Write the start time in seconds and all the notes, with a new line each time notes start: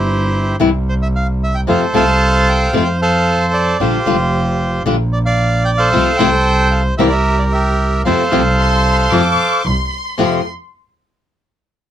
Already playing: G1 E4 G4 C5
0.60 C2 C3 E3 G3 C4 E4
0.89 C5
1.02 E5
1.16 F5
1.43 E5
1.55 G5
1.67 F2 C3 F3 A3 C4 F4 A4 C5 F5
1.94 C2 C3 F3 A3 C4 F4 C5 F5 A5
2.49 G5
2.73 F2 C3 F3 A3 C4 F4 C5 G5
3.02 A4 C5 F5
3.53 D5
3.80 A#1 D3 G3 D4 F4 G4 C5
4.06 F1 D3 G3 D4 F4
4.86 A#1 D3 G3 D4 F4
5.13 D5
5.26 D5 F5
5.65 G5
5.78 A4 C5 F5
5.92 C2 C3 F3 A3 C4 F4
6.17 C2 C3 F3 A3 C4 F4 C5 G5
6.71 F5
6.97 C2 C3 E3 A#3 C4 E4 G4 A#4 E5
7.07 D5
7.12 E5
7.39 D5
7.52 G4 A#4 E5
8.05 F2 C3 F3 A3 C4 F4 A4 C5 F5
8.31 C2 C3 F3 A3 C4 F4
8.59 C6
9.12 F2 C3 F3 A3 C4 F4 D6
9.64 C2 C6
10.18 F2 C3 F3 A3 C4 F4 C6